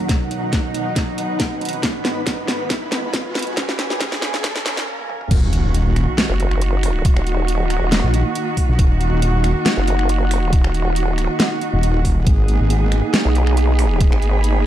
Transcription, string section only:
Already playing: F#3
0.09 B2 D#4
1.83 G#2 D#3 B3
3.57 A#2 F3 C#4
5.31 D#3 A#3 F#4
12.27 A#3 B3 G#4

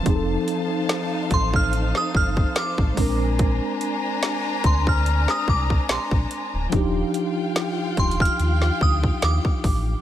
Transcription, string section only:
Already playing: C5 A5
0.06 D#4 F5
2.98 D4 G#5 A#5
6.73 F4 F5 G5

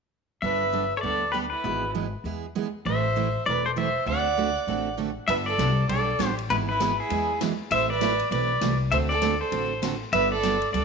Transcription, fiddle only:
0.43 B4
0.98 A4
1.32 G4
1.50 E4
2.86 C5
3.48 B4
3.66 A4
3.78 C5
4.08 D5
5.28 B4
5.47 A4
5.89 A4
6.50 E4
6.68 E4
6.98 E4
7.72 C5
7.90 B4
8.32 B4
8.92 C5
9.10 A4
9.40 A4
10.13 B4
10.32 A4
10.74 A4

